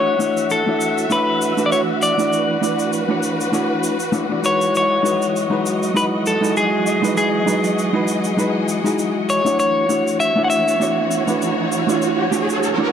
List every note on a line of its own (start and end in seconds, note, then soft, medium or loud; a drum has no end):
0.00 9.55 E3 medium
0.00 0.16 A3 medium
0.00 0.17 D4 medium
0.00 0.17 E4 medium
0.00 0.17 F#4 medium
0.00 7.13 F#4 medium
0.00 12.92 F#4 medium
0.00 0.18 C#5 medium
0.00 0.53 C#5 medium
0.00 2.29 E5 medium
0.00 12.92 F#5 medium
0.19 0.62 A3 medium
0.19 0.63 D4 medium
0.19 0.63 E4 medium
0.19 0.63 F#4 medium
0.19 0.64 C#5 medium
0.19 cabasa medium
0.37 cabasa medium
0.50 1.13 A4 medium
0.50 cabasa soft
0.66 1.07 A3 medium
0.66 1.08 D4 medium
0.66 1.08 E4 medium
0.66 1.08 F#4 medium
0.66 1.09 C#5 medium
0.81 cabasa medium
0.98 cabasa medium
1.10 1.53 A3 medium
1.10 1.54 D4 medium
1.10 1.54 E4 medium
1.10 1.54 F#4 medium
1.10 1.62 B4 medium
1.10 1.55 C#5 medium
1.10 cabasa soft
1.42 cabasa medium
1.57 2.14 A3 medium
1.57 2.14 D4 medium
1.57 2.15 E4 medium
1.57 2.15 F#4 medium
1.57 2.15 B4 medium
1.57 cabasa soft
1.66 1.72 D5 medium
1.72 1.80 C#5 medium
1.72 cabasa soft
2.02 2.89 D5 medium
2.02 cabasa medium
2.18 2.59 A3 medium
2.18 2.59 D4 medium
2.18 2.59 E4 medium
2.18 2.60 F#4 medium
2.18 2.60 D5 medium
2.18 cabasa medium
2.33 4.72 B4 medium
2.33 cabasa soft
2.61 3.05 A3 medium
2.61 3.05 D4 medium
2.61 3.05 E4 medium
2.61 3.06 F#4 medium
2.61 3.06 D5 medium
2.61 cabasa medium
2.79 cabasa medium
2.93 cabasa soft
3.08 3.50 A3 medium
3.08 3.50 D4 medium
3.08 3.50 E4 medium
3.08 3.51 F#4 medium
3.08 3.51 C#5 medium
3.23 cabasa medium
3.41 cabasa medium
3.52 3.96 A3 medium
3.52 3.96 D4 medium
3.52 3.96 E4 medium
3.52 3.97 F#4 medium
3.52 3.97 C#5 loud
3.52 cabasa soft
3.84 cabasa medium
4.00 cabasa medium
4.12 4.26 A3 medium
4.12 4.26 D4 medium
4.12 4.26 E4 medium
4.12 4.27 F#4 medium
4.12 4.27 C#5 medium
4.12 cabasa soft
4.29 4.40 A3 medium
4.29 4.40 D4 medium
4.29 4.41 E4 medium
4.29 4.41 F#4 medium
4.29 4.42 D5 medium
4.42 5.01 G#3 medium
4.42 5.01 D#4 medium
4.42 5.01 E4 medium
4.42 5.02 F#4 medium
4.42 5.02 B4 medium
4.42 4.76 C#5 medium
4.42 cabasa medium
4.61 cabasa soft
4.74 9.55 F#3 medium
4.74 5.96 C#5 loud
4.74 9.55 D#5 medium
4.74 cabasa soft
5.03 5.47 G#3 medium
5.03 5.47 D#4 medium
5.03 5.47 E4 medium
5.03 5.48 F#4 medium
5.03 5.48 B4 medium
5.03 cabasa medium
5.22 cabasa medium
5.36 cabasa soft
5.50 5.91 G#3 medium
5.50 5.92 D#4 medium
5.50 5.92 E4 medium
5.50 5.93 F#4 medium
5.50 5.93 B4 medium
5.66 cabasa medium
5.83 cabasa medium
5.94 6.38 G#3 medium
5.94 6.38 D#4 medium
5.94 6.38 E4 medium
5.94 6.39 F#4 medium
5.94 6.05 B4 medium
5.94 6.39 B4 medium
5.94 cabasa medium
6.26 6.57 A4 medium
6.26 cabasa medium
6.41 6.98 G#3 medium
6.41 6.99 D#4 medium
6.41 6.99 E4 medium
6.41 6.99 F#4 medium
6.41 7.00 G#4 medium
6.41 cabasa medium
6.57 7.16 G#4 medium
6.57 cabasa soft
6.87 cabasa medium
7.02 7.43 G#3 medium
7.02 7.44 D#4 medium
7.02 7.44 E4 medium
7.02 7.44 F#4 medium
7.02 7.45 B4 medium
7.02 cabasa medium
7.16 9.57 G#4 medium
7.16 8.95 G#4 medium
7.16 cabasa soft
7.46 7.90 G#3 medium
7.46 7.90 D#4 medium
7.46 7.90 E4 medium
7.46 7.91 F#4 medium
7.46 7.91 B4 medium
7.46 cabasa medium
7.64 cabasa soft
7.79 cabasa medium
7.93 8.34 G#3 medium
7.93 8.34 D#4 medium
7.93 8.35 E4 medium
7.93 8.35 F#4 medium
7.93 8.36 B4 medium
8.08 cabasa medium
8.24 cabasa medium
8.37 8.80 G#3 medium
8.37 8.81 D#4 medium
8.37 8.81 E4 medium
8.37 8.82 F#4 medium
8.37 8.82 B4 medium
8.37 cabasa soft
8.69 cabasa medium
8.84 9.41 G#3 medium
8.84 9.41 D#4 medium
8.84 9.42 E4 medium
8.84 9.42 F#4 medium
8.84 9.43 G#4 medium
8.84 cabasa medium
8.99 cabasa soft
9.29 9.58 C#5 medium
9.29 cabasa medium
9.45 9.86 A3 medium
9.45 9.86 D4 medium
9.45 9.86 E4 medium
9.45 9.87 F#4 medium
9.45 9.87 C#5 medium
9.45 cabasa medium
9.59 12.92 E3 medium
9.59 12.92 F#4 medium
9.59 12.92 C#5 medium
9.59 10.20 C#5 medium
9.59 riser medium
9.59 cabasa soft
9.89 10.32 A3 medium
9.89 10.33 D4 medium
9.89 10.33 E4 medium
9.89 10.33 F#4 medium
9.89 10.34 C#5 medium
9.89 cabasa medium
10.08 cabasa soft
10.20 10.44 E5 medium
10.20 cabasa soft
10.35 10.77 A3 medium
10.35 10.77 D4 medium
10.35 10.77 E4 medium
10.35 10.78 F#4 medium
10.35 10.78 C#5 medium
10.44 10.49 F#5 medium
10.50 12.92 E5 loud
10.50 cabasa medium
10.68 cabasa medium
10.80 11.23 A3 medium
10.80 11.23 D4 medium
10.80 11.24 E4 medium
10.80 11.24 F#4 medium
10.80 11.24 C#5 medium
10.80 cabasa soft
11.11 cabasa medium
11.27 11.84 A3 medium
11.27 11.84 D4 medium
11.27 11.84 E4 medium
11.27 11.85 F#4 medium
11.27 11.85 B4 medium
11.27 cabasa soft
11.42 cabasa soft
11.72 cabasa medium
11.87 12.28 A3 medium
11.87 12.29 D4 medium
11.87 12.29 E4 medium
11.87 12.29 F#4 medium
11.87 12.30 C#5 medium
11.87 cabasa medium
12.02 cabasa soft
12.31 12.75 A3 medium
12.31 12.75 D4 medium
12.31 12.75 E4 medium
12.31 12.76 F#4 medium
12.31 12.76 C#5 medium
12.31 cabasa medium
12.50 cabasa soft
12.63 cabasa soft
12.78 12.92 A3 medium
12.78 12.92 D4 medium
12.78 12.92 E4 medium
12.78 12.92 F#4 medium
12.78 12.92 C#5 medium